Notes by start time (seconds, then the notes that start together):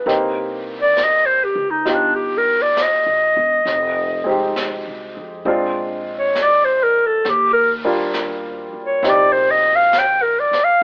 Already playing: B4
0.06 C2 A#3 C4 D#4 G4, brush sweep, snare
0.82 D5
0.97 snare, hi-hat pedal
1.03 D#5
1.26 C5
1.44 G4
1.55 C#2
1.70 D#4
1.85 G1 D#4 F4 G4, brush sweep, snare
1.94 D4
2.15 G4
2.38 A#4
2.62 D5
2.77 snare, hi-hat pedal
2.83 D#5
3.06 A#1
3.37 E1
3.65 F1, brush sweep, snare
4.24 G#3 C4 D#4
4.29 G4
4.56 snare, hi-hat pedal
4.87 C2
5.17 F2
5.45 A#1 G#3 C4 D4 F4, brush sweep
6.19 C#5
6.35 snare, hi-hat pedal
6.42 D5
6.64 C5
6.83 A#4
7.06 A4
7.25 D#2, brush sweep, snare
7.29 G4
7.53 A#4
7.84 G3 A#3 D4 F4
8.14 snare, hi-hat pedal
8.74 muted upright bass stroke
8.86 C#5
9.03 A#1 C4 D#4 G4, brush sweep, snare
9.09 D5
9.32 C5
9.51 D#5
9.76 F5
9.93 snare, hi-hat pedal
9.98 G5
10.22 A#4
10.40 D5
10.51 muted upright bass stroke, snare
10.64 F5